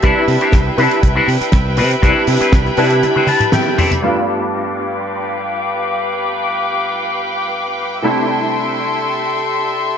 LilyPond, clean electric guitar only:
\new Staff \with { instrumentName = "Clean electric guitar" } { \time 4/4 \key g \mixolydian \tempo 4 = 120 << { r1 | r2 r8 a''8 g''8 d''8 | r1 | r1 |
r1 | } \\ { <c' e' b'>8 r16 <c' e' g'>16 r8 <c' e' b'>8 r16 <c' e' b'>16 r4 <c' e' b'>16 r16 | <c' e' b'>8 r16 <c' e' b'>16 r8 <c' e' b'>8 r16 <c' e' b'>16 r4 <c' e' a'>16 r16 | r1 | r1 |
r1 | } >> }